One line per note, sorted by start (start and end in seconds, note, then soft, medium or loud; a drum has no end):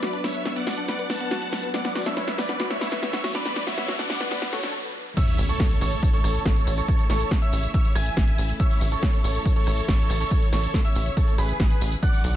0.00 5.13 F#3 medium
0.00 5.13 B3 medium
0.00 5.13 D4 medium
0.00 0.08 F#4 loud
0.00 0.20 B4 medium
0.00 5.13 B4 medium
0.00 0.20 D5 medium
0.00 snare medium
0.00 closed hi-hat medium
0.00 riser medium
0.13 0.22 D4 medium
0.13 closed hi-hat soft
0.24 0.52 C#5 medium
0.24 0.52 E5 loud
0.24 0.32 B5 medium
0.24 snare medium
0.24 open hi-hat loud
0.35 0.40 B4 medium
0.35 closed hi-hat soft
0.45 0.51 B3 medium
0.45 snare medium
0.45 closed hi-hat medium
0.56 0.59 B3 loud
0.56 0.85 D5 medium
0.56 0.85 F#5 loud
0.56 closed hi-hat soft
0.67 0.72 F#4 medium
0.67 snare medium
0.67 open hi-hat loud
0.78 0.86 D4 medium
0.78 closed hi-hat soft
0.88 1.07 D5 medium
0.88 1.07 F#5 medium
0.88 0.97 B5 medium
0.88 snare medium
0.88 closed hi-hat medium
0.99 1.05 B4 medium
0.99 closed hi-hat soft
1.10 1.15 B3 medium
1.10 1.65 F#5 medium
1.10 1.65 A5 loud
1.10 snare medium
1.10 open hi-hat loud
1.20 1.24 B3 loud
1.20 closed hi-hat soft
1.31 1.37 F#4 loud
1.31 snare medium
1.31 closed hi-hat medium
1.42 1.50 D4 medium
1.42 closed hi-hat soft
1.53 1.61 B5 medium
1.53 snare medium
1.53 open hi-hat loud
1.63 1.69 B4 medium
1.63 closed hi-hat soft
1.74 1.80 B3 medium
1.74 2.02 D5 medium
1.74 2.02 F#5 loud
1.74 snare medium
1.74 closed hi-hat medium
1.85 1.88 B3 loud
1.85 snare medium
1.85 closed hi-hat soft
1.95 2.01 F#4 loud
1.95 snare medium
1.95 open hi-hat loud
2.06 2.14 D4 medium
2.06 2.35 C#5 medium
2.06 2.35 E5 loud
2.06 snare medium
2.06 closed hi-hat soft
2.17 2.25 B5 medium
2.17 snare medium
2.17 closed hi-hat medium
2.28 2.33 B4 medium
2.28 snare medium
2.28 closed hi-hat soft
2.38 2.44 B3 medium
2.38 2.67 B4 medium
2.38 2.67 D5 loud
2.38 snare loud
2.38 open hi-hat loud
2.49 2.52 B3 loud
2.49 snare medium
2.49 closed hi-hat soft
2.60 2.65 F#4 loud
2.60 snare medium
2.60 closed hi-hat medium
2.70 2.79 D4 medium
2.70 2.99 C#5 medium
2.70 2.99 E5 loud
2.70 snare medium
2.70 closed hi-hat soft
2.81 2.89 B5 medium
2.81 snare loud
2.81 open hi-hat loud
2.92 2.97 B4 medium
2.92 snare medium
2.92 closed hi-hat soft
3.03 3.08 B3 medium
3.03 3.31 C#5 medium
3.03 3.31 E5 medium
3.03 snare loud
3.03 closed hi-hat medium
3.13 3.17 B3 loud
3.13 snare medium
3.13 closed hi-hat soft
3.24 3.30 F#4 loud
3.24 snare loud
3.24 open hi-hat loud
3.35 3.43 D4 medium
3.35 3.63 B4 medium
3.35 3.63 D5 loud
3.35 snare medium
3.35 closed hi-hat soft
3.45 3.54 B5 medium
3.45 snare medium
3.45 closed hi-hat medium
3.56 3.62 B4 medium
3.56 snare medium
3.56 closed hi-hat soft
3.67 3.72 B3 medium
3.67 3.95 C#5 medium
3.67 3.95 E5 loud
3.67 snare loud
3.67 open hi-hat loud
3.78 3.81 B3 loud
3.78 snare loud
3.78 closed hi-hat soft
3.88 3.94 F#4 loud
3.88 snare loud
3.88 closed hi-hat medium
3.99 4.07 D4 medium
3.99 4.27 D5 medium
3.99 4.27 F#5 loud
3.99 snare medium
3.99 closed hi-hat soft
4.10 4.18 B5 medium
4.10 snare loud
4.10 open hi-hat loud
4.20 4.26 B4 medium
4.20 snare medium
4.31 4.37 B3 medium
4.31 4.50 B4 medium
4.31 4.50 D5 loud
4.31 snare loud
4.31 closed hi-hat medium
4.42 4.45 B3 loud
4.42 snare loud
4.42 closed hi-hat soft
4.53 4.58 F#4 loud
4.53 4.74 A4 medium
4.53 4.74 C#5 loud
4.53 snare loud
4.53 open hi-hat loud
4.63 4.72 D4 medium
4.63 snare medium
4.63 closed hi-hat soft
5.17 11.99 C#3 medium
5.17 11.99 E3 medium
5.17 11.99 A3 medium
5.17 11.99 E4 medium
5.17 5.45 C#5 medium
5.17 5.45 E5 loud
5.17 5.45 E6 loud
5.17 kick loud
5.17 closed hi-hat medium
5.17 tambourine soft
5.17 crash loud
5.17 impact medium
5.28 open hi-hat medium
5.28 tambourine soft
5.38 5.53 A1 medium
5.38 open hi-hat loud
5.38 tambourine medium
5.49 5.77 A4 medium
5.49 5.77 C#5 medium
5.49 5.77 C#6 medium
5.49 closed hi-hat soft
5.49 tambourine soft
5.60 kick loud
5.60 snare loud
5.60 closed hi-hat medium
5.60 tambourine soft
5.70 closed hi-hat soft
5.70 tambourine soft
5.81 5.96 A1 loud
5.81 6.10 A4 medium
5.81 6.10 C#5 loud
5.81 6.10 C#6 medium
5.81 open hi-hat loud
5.81 tambourine medium
5.92 closed hi-hat soft
5.92 tambourine soft
6.03 kick loud
6.03 closed hi-hat medium
6.03 tambourine soft
6.13 6.42 A4 medium
6.13 6.42 C#5 loud
6.13 6.42 C#6 loud
6.13 closed hi-hat soft
6.13 tambourine soft
6.24 6.38 A1 medium
6.24 cross-stick medium
6.24 open hi-hat loud
6.24 tambourine medium
6.35 closed hi-hat soft
6.35 tambourine soft
6.45 6.60 A1 medium
6.45 6.74 A4 medium
6.45 6.74 C#5 medium
6.45 6.74 C#6 medium
6.45 kick loud
6.45 snare loud
6.45 closed hi-hat medium
6.45 tambourine soft
6.56 closed hi-hat soft
6.56 tambourine soft
6.67 6.81 A1 loud
6.67 cross-stick medium
6.67 open hi-hat loud
6.67 tambourine medium
6.78 7.06 A4 medium
6.78 7.06 C#5 loud
6.78 7.06 C#6 medium
6.78 closed hi-hat soft
6.78 tambourine soft
6.88 kick loud
6.88 closed hi-hat medium
6.88 tambourine soft
6.99 closed hi-hat soft
6.99 tambourine soft
7.10 7.24 A1 loud
7.10 7.38 A4 medium
7.10 7.38 C#5 loud
7.10 7.38 C#6 loud
7.10 cross-stick medium
7.10 snare medium
7.10 open hi-hat loud
7.10 tambourine medium
7.20 closed hi-hat soft
7.20 tambourine soft
7.31 kick loud
7.31 snare loud
7.31 closed hi-hat medium
7.31 tambourine soft
7.42 7.70 C#5 medium
7.42 7.70 E5 loud
7.42 7.70 E6 medium
7.42 closed hi-hat soft
7.42 tambourine soft
7.53 7.67 A1 loud
7.53 open hi-hat loud
7.53 tambourine medium
7.63 closed hi-hat soft
7.63 tambourine soft
7.74 7.93 C#5 medium
7.74 7.93 E5 medium
7.74 7.93 E6 medium
7.74 kick loud
7.74 closed hi-hat medium
7.74 tambourine soft
7.85 closed hi-hat soft
7.85 tambourine soft
7.95 8.10 A1 medium
7.95 8.51 E5 medium
7.95 8.51 G#5 loud
7.95 8.51 G#6 medium
7.95 cross-stick medium
7.95 open hi-hat loud
7.95 tambourine medium
8.06 closed hi-hat soft
8.06 tambourine soft
8.17 8.31 A1 medium
8.17 kick loud
8.17 snare loud
8.17 closed hi-hat medium
8.17 tambourine soft
8.28 closed hi-hat soft
8.28 tambourine soft
8.38 8.53 A1 loud
8.38 open hi-hat loud
8.38 tambourine medium
8.49 closed hi-hat soft
8.49 tambourine soft
8.60 8.88 C#5 medium
8.60 8.88 E5 loud
8.60 8.88 E6 medium
8.60 kick loud
8.60 closed hi-hat medium
8.60 tambourine soft
8.71 open hi-hat medium
8.71 tambourine soft
8.81 8.96 A1 medium
8.81 open hi-hat loud
8.81 tambourine medium
8.92 9.20 A4 medium
8.92 9.20 C#5 loud
8.92 9.20 C#6 medium
8.92 closed hi-hat soft
8.92 tambourine soft
9.03 kick loud
9.03 snare loud
9.03 closed hi-hat medium
9.03 tambourine soft
9.13 closed hi-hat soft
9.13 tambourine soft
9.24 9.38 A1 loud
9.24 9.52 A4 medium
9.24 9.52 C#5 loud
9.24 9.52 C#6 medium
9.24 open hi-hat loud
9.24 tambourine medium
9.35 closed hi-hat soft
9.35 tambourine soft
9.45 kick loud
9.45 closed hi-hat medium
9.45 tambourine soft
9.56 9.85 A4 medium
9.56 9.85 C#5 loud
9.56 9.85 C#6 loud
9.56 closed hi-hat soft
9.56 tambourine soft
9.67 9.81 A1 medium
9.67 cross-stick medium
9.67 open hi-hat loud
9.67 tambourine medium
9.78 closed hi-hat soft
9.78 tambourine soft
9.88 10.03 A1 medium
9.88 10.17 A4 medium
9.88 10.17 C#6 medium
9.88 kick loud
9.88 snare loud
9.88 closed hi-hat medium
9.88 tambourine soft
9.99 closed hi-hat soft
9.99 tambourine soft
10.10 10.24 A1 loud
10.10 cross-stick medium
10.10 open hi-hat loud
10.10 tambourine medium
10.20 10.49 A4 medium
10.20 10.49 C#5 loud
10.20 10.49 C#6 medium
10.20 closed hi-hat soft
10.20 tambourine soft
10.31 kick loud
10.31 closed hi-hat medium
10.31 tambourine soft
10.42 closed hi-hat soft
10.42 tambourine soft
10.53 10.67 A1 loud
10.53 10.81 A4 medium
10.53 10.81 C#5 loud
10.53 10.81 C#6 loud
10.53 cross-stick medium
10.53 snare medium
10.53 open hi-hat loud
10.53 tambourine medium
10.63 closed hi-hat soft
10.63 tambourine soft
10.74 kick loud
10.74 snare loud
10.74 closed hi-hat medium
10.74 tambourine soft
10.85 11.13 C#5 medium
10.85 11.13 E5 loud
10.85 11.13 E6 medium
10.85 closed hi-hat soft
10.85 tambourine soft
10.96 11.10 A1 loud
10.96 open hi-hat loud
10.96 tambourine medium
11.06 closed hi-hat soft
11.06 tambourine soft
11.17 11.36 A4 medium
11.17 11.36 C#5 medium
11.17 11.36 C#6 medium
11.17 kick loud
11.17 closed hi-hat medium
11.17 tambourine soft
11.28 closed hi-hat soft
11.28 tambourine soft
11.38 11.53 A1 medium
11.38 11.94 G#4 medium
11.38 11.94 B4 loud
11.38 11.94 B5 medium
11.38 cross-stick medium
11.38 open hi-hat loud
11.38 tambourine medium
11.49 closed hi-hat soft
11.49 tambourine soft
11.60 11.74 A1 medium
11.60 kick loud
11.60 snare loud
11.60 closed hi-hat medium
11.60 tambourine soft
11.71 closed hi-hat soft
11.71 tambourine soft
11.81 11.96 A1 loud
11.81 open hi-hat loud
11.81 tambourine medium
11.92 closed hi-hat soft
11.92 tambourine soft
12.03 12.36 D3 medium
12.03 12.36 F#3 medium
12.03 12.36 B3 medium
12.03 12.36 F#4 medium
12.03 12.31 D5 medium
12.03 12.31 F#5 loud
12.03 12.31 F#6 loud
12.03 kick loud
12.03 closed hi-hat medium
12.03 tambourine soft
12.13 open hi-hat medium
12.13 tambourine soft
12.24 12.36 B1 loud
12.24 open hi-hat loud
12.24 tambourine medium